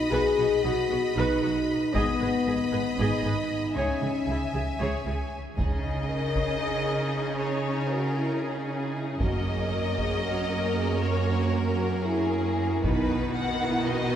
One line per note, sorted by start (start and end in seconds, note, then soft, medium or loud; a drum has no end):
0.00 0.12 D#4 medium
0.00 1.94 D#5 soft
0.00 1.89 B5 medium
0.11 0.20 B1 soft
0.11 0.20 B2 medium
0.11 0.36 F#4 soft
0.11 0.64 G#4 medium
0.11 0.36 B4 soft
0.38 0.46 B1 soft
0.38 0.46 B2 soft
0.38 0.46 F#4 soft
0.64 0.72 B1 soft
0.64 0.72 B2 soft
0.64 0.73 D#4 soft
0.64 1.16 F#4 medium
0.64 0.73 F#4 soft
0.90 0.98 B1 soft
0.90 0.99 B2 soft
0.90 0.98 F#4 soft
1.16 1.24 B1 medium
1.16 1.24 B2 medium
1.16 1.93 D#4 medium
1.16 1.40 F#4 medium
1.16 1.40 B4 medium
1.42 1.51 B1 soft
1.42 1.50 B2 soft
1.42 1.50 F#4 soft
1.94 2.03 G#1 soft
1.94 2.03 G#2 medium
1.94 2.98 B3 medium
1.94 2.18 G#4 soft
1.94 2.18 D#5 medium
1.94 3.73 D#5 soft
1.94 3.73 B5 soft
1.94 taiko soft
2.21 2.29 G#1 soft
2.21 2.29 G#2 soft
2.21 2.29 G#4 soft
2.21 2.29 B4 soft
2.47 2.55 G#1 soft
2.47 2.55 G#2 soft
2.47 2.56 G#4 soft
2.72 2.81 G#1 soft
2.72 2.81 G#2 soft
2.72 2.80 G#4 soft
2.72 2.80 B4 soft
2.98 3.07 G#1 medium
2.98 3.07 G#2 soft
2.98 3.76 D#4 medium
2.98 3.23 G#4 soft
2.98 3.22 D#5 soft
3.24 3.32 G#1 soft
3.24 3.33 G#2 soft
3.24 3.33 G#4 soft
3.24 3.33 B4 soft
3.75 3.84 C#2 soft
3.75 3.83 C#3 soft
3.75 4.80 C#4 medium
3.75 4.00 G#4 soft
3.75 4.00 C#5 soft
3.75 5.38 E5 soft
3.75 5.35 G#5 soft
4.02 4.10 C#2 soft
4.02 4.10 C#3 soft
4.02 4.11 G#4 soft
4.28 4.36 C#2 soft
4.28 4.36 C#3 soft
4.28 4.38 E4 soft
4.28 4.38 G#4 soft
4.53 4.62 C#2 soft
4.53 4.61 C#3 soft
4.53 4.62 G#4 soft
4.80 4.88 C#2 soft
4.80 4.88 C#3 soft
4.80 5.04 G#4 soft
4.80 5.04 C#5 soft
5.06 5.14 C#2 soft
5.06 5.14 C#3 soft
5.06 5.16 G#4 soft
5.56 6.06 C#2 soft
5.56 9.17 C#3 soft
5.56 9.17 C#4 soft
5.56 9.17 D#4 soft
5.56 9.16 G#4 soft
5.56 7.36 D#5 medium
5.56 taiko soft
6.09 6.58 A#4 soft
6.36 taiko soft
6.62 7.92 G#4 soft
7.38 7.89 C#5 medium
7.91 8.17 F#4 soft
7.91 8.43 A#4 medium
8.16 8.42 E4 soft
8.42 8.69 D#4 soft
8.42 9.21 G#4 soft
8.69 8.95 C#4 soft
8.95 9.21 E4 soft
9.20 9.69 F#1 soft
9.20 12.79 F#2 soft
9.20 12.79 A#3 soft
9.20 12.80 C#4 soft
9.20 12.79 F#4 soft
9.20 9.47 F#4 soft
9.20 12.79 A#4 soft
9.20 10.99 D#5 medium
9.20 taiko medium
9.46 9.72 G#4 soft
9.74 9.99 A#4 soft
9.98 10.24 G#4 soft
9.98 taiko soft
10.24 10.50 F#4 soft
10.52 10.77 A#4 medium
10.77 11.02 G#4 soft
11.03 11.29 A#4 medium
11.03 11.55 C#5 medium
11.28 12.06 F#4 medium
11.54 12.06 A#4 medium
12.05 12.82 E4 medium
12.05 12.83 G#4 medium
12.83 13.32 B1 medium
12.83 14.16 B2 medium
12.83 14.16 D#3 medium
12.83 14.16 B3 medium
12.83 14.16 D#4 medium
12.83 13.21 D#4 medium
12.83 14.16 F#4 medium
12.83 13.34 B4 medium
12.83 taiko medium
13.35 13.61 D#4 medium
13.35 13.86 F#5 medium
13.63 13.88 E4 medium
13.87 14.14 F#4 medium
13.87 14.16 D#5 medium